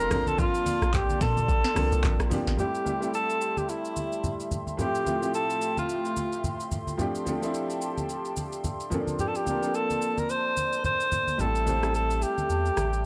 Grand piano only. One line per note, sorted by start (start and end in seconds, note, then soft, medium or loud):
0.00 0.09 F3 medium
0.00 0.13 A3 medium
0.00 0.12 B3 medium
0.00 0.11 C4 medium
0.00 0.12 D4 medium
0.00 0.13 G4 medium
0.09 0.99 F3 medium
0.09 1.00 A#3 medium
0.09 1.00 C4 medium
0.09 1.00 D4 medium
0.09 1.01 A4 medium
1.74 2.21 F3 medium
1.74 2.22 A#3 medium
1.74 2.22 C4 medium
1.74 2.22 D4 medium
1.74 2.23 A4 medium
2.29 2.53 F3 medium
2.29 2.54 A#3 medium
2.29 2.54 C4 medium
2.29 2.55 D4 medium
2.29 2.55 G4 medium
2.57 2.81 G3 medium
2.57 2.81 A3 medium
2.57 2.82 C4 medium
2.57 2.82 E4 medium
2.57 2.83 G4 medium
2.84 2.98 G3 medium
2.84 2.99 A3 medium
2.84 2.99 C4 medium
2.84 3.00 E4 medium
2.84 3.00 G4 medium
3.00 3.88 G3 medium
3.00 3.89 A3 medium
3.00 3.89 C4 medium
3.00 3.90 E4 medium
3.00 3.90 A4 medium
4.77 5.01 A2 medium
4.77 5.01 F3 medium
4.77 5.02 A3 medium
4.77 5.02 C4 medium
4.77 5.02 E4 medium
4.77 5.03 G4 medium
5.05 5.18 A2 medium
5.05 5.19 F3 medium
5.05 5.19 A3 medium
5.05 5.19 C4 medium
5.05 5.20 E4 medium
5.05 5.20 G4 medium
5.21 6.09 A2 medium
5.21 6.09 F3 medium
5.21 6.09 A3 medium
5.21 6.10 C4 medium
5.21 6.11 G4 medium
5.21 6.10 E5 medium
6.97 7.21 F3 medium
6.97 7.22 A3 medium
6.97 7.22 C4 medium
6.97 7.22 D4 medium
6.97 7.23 G4 loud
7.25 7.38 F3 medium
7.25 7.39 A3 medium
7.25 7.39 C4 medium
7.25 7.40 D4 medium
7.25 7.40 A4 loud
7.41 8.29 F3 medium
7.41 8.29 A3 medium
7.41 8.30 C4 medium
7.41 8.30 D4 medium
7.41 8.31 E4 loud
8.90 9.37 F3 medium
8.90 9.37 A#3 medium
8.90 9.38 C4 medium
8.90 9.00 C#4 medium
8.90 9.39 A4 loud
8.99 9.41 D4 medium
9.45 9.59 F3 medium
9.45 9.59 A#3 medium
9.45 9.60 C4 medium
9.45 9.60 D4 medium
9.45 9.61 A#4 medium
9.61 10.49 F3 medium
9.61 10.50 A#3 medium
9.61 10.50 C4 medium
9.61 10.50 D4 medium
9.61 10.51 A4 medium
11.38 11.61 G3 medium
11.38 11.62 A3 medium
11.38 11.62 C4 medium
11.38 11.63 E4 medium
11.38 11.63 A4 medium
11.65 11.79 G3 medium
11.65 11.79 A3 medium
11.65 11.80 C4 medium
11.65 11.80 E4 medium
11.65 11.81 C5 medium
11.81 12.69 G3 medium
11.81 12.70 A3 medium
11.81 12.70 C4 medium
11.81 12.71 E4 medium
11.81 12.71 A4 medium